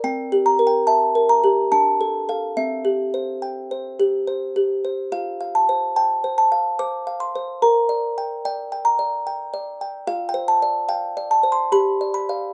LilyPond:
\new Staff \with { instrumentName = "Music box" } { \time 3/4 \key g \dorian \tempo 4 = 72 << { g''8 bes''16 g''16 a''8 bes''8 a''4 | e''2 r4 | f''8 a''8 g''8 a''8 d'''8 c'''8 | bes''4 g''8 bes''4. |
\key d \dorian f''16 g''16 a''8 g''8 a''16 c'''16 b''8 b''8 | } \\ { \tuplet 3/2 { c'8 g'8 bes'8 e''8 bes'8 g'8 d'8 a'8 <a' f''>8 } | \tuplet 3/2 { c'8 g'8 c''8 g''8 c''8 g'8 c''8 g'8 c''8 } | \tuplet 3/2 { f'8 f''8 c''8 a''8 c''8 f''8 c''8 f''8 c''8 } | \tuplet 3/2 { bes'8 d''8 g''8 d''8 g''8 d''8 g''8 d''8 g''8 } |
\tuplet 3/2 { f'8 c''8 d''8 f''8 d''8 c''8 g'8 d''8 <d'' f''>8 } | } >> }